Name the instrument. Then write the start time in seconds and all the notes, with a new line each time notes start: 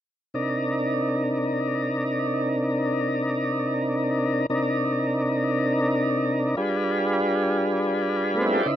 tonewheel organ
0.34 C3 D4 D#4 A#4
4.50 C3 D4 D#4 A#4
6.57 G3 D4 F4 G#4 B4
8.34 A3 B3
8.41 C4 D4
8.46 E4 F4
8.52 G4 A4
8.57 B4 C5
8.63 C#3 D#4 E4 B4 D5